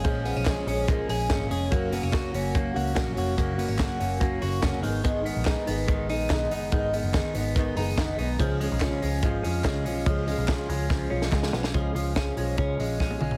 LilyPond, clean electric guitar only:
\new Staff \with { instrumentName = "Clean electric guitar" } { \time 4/4 \key des \mixolydian \tempo 4 = 144 <f bes des' aes'>8 ces'16 des'16 aes'8 des'8 bes8 aes'8 des'8 aes'8 | bes8 ces'16 des'16 ges'8 des'8 bes8 ges'8 des'8 ges'8 | bes8 ces'16 des'16 ges'8 des'8 bes8 ges'8 des'8 ees8 | ees8 ces'8 ees'8 ces'8 ees8 ees'8 ces'8 ees'8 |
ees8 ces'8 ees'8 ces'8 ees8 ees'8 ces'8 ees'8 | f8 aes8 des'8 aes8 f8 des'8 aes8 des'8 | f8 aes8 des'8 aes8 f8 des'8 aes8 ces'16 des'16 | f8 f8 des'8 aes8 des'8 aes8 des'8 aes8 | }